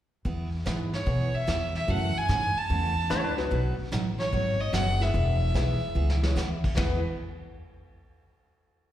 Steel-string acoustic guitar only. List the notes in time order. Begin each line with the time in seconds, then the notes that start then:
0.25 E3 B3 E4 G#4
0.66 E3 B3 E4 G#4
1.06 E3 B3 E4 G#4
1.47 E3 B3 E4 G#4
1.88 C#3 E3 A3 C#4 F#4
2.29 C#3 E3 A3 C#4 F#4
2.69 C#3 E3 A3 C#4 F#4
3.10 C#3 E3 A3 C#4 F#4
3.51 B2 F#3 B3 D#4 F#4
3.92 B2 F#3 B3 D#4 F#4
4.32 B2 F#3 B3 D#4 F#4
4.73 B2 F#3 B3 D#4 F#4
5.14 E3 B3 E4 G#4
5.54 E3 B3 E4 G#4
5.95 E3 B3 E4 G#4
6.36 E3 B3 E4 G#4
6.76 E3 B3 E4 G#4